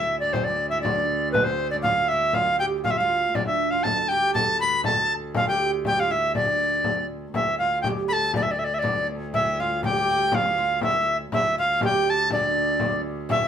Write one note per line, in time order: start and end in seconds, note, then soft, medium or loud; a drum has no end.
0.00 3.34 D2 medium
0.00 0.21 E4 medium
0.00 0.18 E5 medium
0.08 frame drum soft
0.19 0.34 D4 medium
0.19 0.35 D5 medium
0.33 0.47 C4 medium
0.33 0.46 C5 medium
0.33 frame drum medium
0.44 0.71 D4 medium
0.44 0.69 D5 medium
0.69 0.83 E4 medium
0.69 0.81 E5 medium
0.81 1.35 D4 medium
0.81 1.29 D5 medium
0.81 frame drum medium
1.09 frame drum soft
1.32 1.45 B3 medium
1.32 1.45 B4 medium
1.32 frame drum medium
1.44 1.72 C4 medium
1.44 1.70 C5 medium
1.71 1.85 D4 medium
1.71 1.76 D5 medium
1.82 2.10 F4 medium
1.82 2.10 F5 medium
1.82 frame drum medium
2.08 2.34 E4 medium
2.08 2.36 E5 medium
2.33 2.58 F4 medium
2.33 2.59 F5 medium
2.33 frame drum medium
2.59 2.86 G4 medium
2.59 2.65 G5 medium
2.59 frame drum soft
2.84 2.99 F4 medium
2.84 2.92 F5 medium
2.84 frame drum medium
2.91 2.99 E5 medium
2.98 3.37 F4 medium
2.98 3.37 F5 medium
3.35 7.34 D2 medium
3.35 3.74 D4 medium
3.35 3.46 D5 medium
3.35 frame drum medium
3.46 3.72 E5 medium
3.71 3.85 F4 medium
3.71 3.85 F5 medium
3.83 4.10 A4 medium
3.83 4.10 A5 medium
3.83 frame drum medium
4.08 4.36 G4 medium
4.08 4.33 G5 medium
4.08 frame drum soft
4.34 4.59 A4 medium
4.34 4.58 A5 medium
4.34 frame drum medium
4.60 4.87 B4 medium
4.60 4.83 B5 medium
4.84 5.13 A5 loud
4.84 frame drum medium
4.88 5.33 A4 medium
5.10 frame drum soft
5.35 5.49 F4 medium
5.35 5.48 F5 medium
5.35 frame drum medium
5.48 5.72 G4 medium
5.48 5.71 G5 medium
5.85 5.98 G4 medium
5.85 6.01 G5 medium
5.85 frame drum medium
5.98 6.11 F4 medium
5.98 6.13 F5 medium
6.11 6.35 E4 medium
6.11 6.35 E5 medium
6.35 7.06 D4 medium
6.35 7.06 D5 medium
6.35 frame drum medium
6.84 frame drum medium
7.09 frame drum soft
7.34 11.33 D2 medium
7.34 7.60 E4 medium
7.34 7.58 E5 medium
7.34 frame drum medium
7.58 7.85 F4 medium
7.58 7.81 F5 medium
7.58 frame drum soft
7.82 7.88 G5 medium
7.82 frame drum medium
7.87 8.10 G4 medium
8.08 8.33 A4 medium
8.08 8.14 B5 medium
8.13 8.32 A5 medium
8.34 8.44 D5 medium
8.34 frame drum medium
8.43 8.53 E5 medium
8.51 8.61 D5 medium
8.59 8.66 E5 medium
8.59 frame drum soft
8.64 8.76 D5 medium
8.74 8.80 E5 medium
8.79 9.07 D4 medium
8.79 9.07 D5 medium
8.84 frame drum medium
9.34 9.59 E4 medium
9.34 9.61 E5 medium
9.34 frame drum medium
9.58 9.84 F4 medium
9.58 9.84 F5 medium
9.58 frame drum soft
9.83 9.90 G4 medium
9.83 10.36 G5 medium
9.83 frame drum medium
9.93 9.95 G4 medium
9.93 10.09 G4 medium
10.10 10.34 G4 medium
10.32 10.57 F4 medium
10.32 10.82 F5 medium
10.32 frame drum medium
10.57 10.82 F4 medium
10.57 frame drum soft
10.81 11.17 E4 medium
10.81 11.17 E5 medium
10.81 frame drum medium
11.08 frame drum soft
11.32 13.48 D2 medium
11.32 11.58 E4 medium
11.32 11.56 E5 medium
11.32 frame drum medium
11.58 11.83 F4 medium
11.58 11.81 F5 medium
11.58 frame drum soft
11.81 12.32 G4 medium
11.81 12.11 G5 loud
11.81 frame drum medium
12.10 12.32 A5 medium
12.30 12.80 D4 medium
12.30 13.02 D5 medium
12.30 frame drum medium
12.56 frame drum soft
12.80 13.04 D4 medium
12.80 frame drum medium
13.29 13.48 E4 medium
13.29 13.48 E5 medium
13.29 frame drum medium